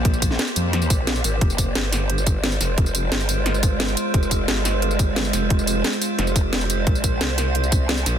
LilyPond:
<<
  \new Staff \with { instrumentName = "Synth drone" } { \time 4/4 \key f \minor \tempo 4 = 176 << { c''1 | c''1~ | c''1~ | c''1~ |
c''1~ | c''1 | } \\ { <bes g'>1 | <aes f'>1~ | <aes f'>1~ | <aes f'>1~ |
<aes f'>1 | <bes f'>1 | } >> }
  \new Staff \with { instrumentName = "Wobble bass" } { \clef bass \time 4/4 \key f \minor bes,,4 r8 f,4 bes,,4 aes,,8 | f,,4 g,,2~ g,,8 f,,8 | f,,4 g,,2~ g,,8 r8 | f,,4 g,,2~ g,,8 f,,8 |
f,,4 r4 f,,2 | bes,,4 c,2~ c,8 bes,,8 | }
  \new DrumStaff \with { instrumentName = "Drums" } \drummode { \time 4/4 <hh bd>16 tamb16 <hh bd tamb>16 sn16 <hh sn>16 tamb16 <hh tamb>8 <hh sn>16 tamb16 <hh bd tamb>8 <hh sn>16 tamb16 <hh tamb>8 | <hh bd>16 tamb16 <hh bd tamb>8 <hh sn>8 <hh sn tamb>8 hh16 tamb16 <hh bd tamb>8 <hh sn>16 tamb16 <hh sn tamb>8 | <hh bd>16 tamb16 <hh tamb>8 <hh sn>16 tamb16 <hh tamb>8 <hh sn>16 tamb16 <hh bd tamb>8 <hh sn>16 tamb16 <hh tamb>8 | <hh bd>16 tamb16 <hh bd tamb>8 <hh sn>8 <hh sn tamb>8 hh16 tamb16 <hh bd tamb>8 <hh sn>16 tamb16 <hh sn tamb>8 |
<hh bd>16 tamb16 <hh tamb>8 <hh sn>16 tamb16 <hh tamb>8 <hh sn>16 tamb16 <hh bd tamb>8 <hh sn>16 tamb16 <hh tamb>8 | <hh bd>16 tamb16 <hh bd tamb>8 <hh sn>8 <hh sn tamb>8 hh16 tamb16 <hh bd tamb>8 <hh sn>16 tamb16 <hh sn tamb>8 | }
>>